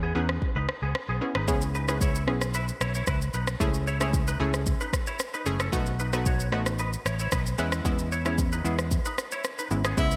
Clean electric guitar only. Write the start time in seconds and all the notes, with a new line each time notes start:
0.03 B3 G#4
0.16 D#4 B4
0.56 D#4 B4
0.83 B3 G#4
1.09 B3 G#4
1.36 D#4 B4
1.75 D#4 B4
1.89 D#4 B4
2.02 E4 C#5
2.55 E4 B4
2.81 E4 C#5
2.95 E4 C#5
3.08 E4 B4
3.34 D#4 B4
3.87 E4 C#5
4.01 E4 C#5
4.28 D#4 B4
4.41 C#4 A4
4.81 D#4 B4
5.07 E4 C#5
5.34 D#4 B4
5.61 C#4 A4
6.00 D#4 B4
6.14 D#4 B4
6.26 F#4 C#5
6.79 D#4 B4
7.06 E4 C#5
7.20 E4 C#5
7.33 D#4 B4
7.59 E4 B4
8.12 E4 C#5
8.26 E4 C#5
8.53 D#4 B4
8.65 B3 G#4
9.06 D#4 B4
9.32 E4 C#5
9.59 D#4 B4
9.85 B3 G#4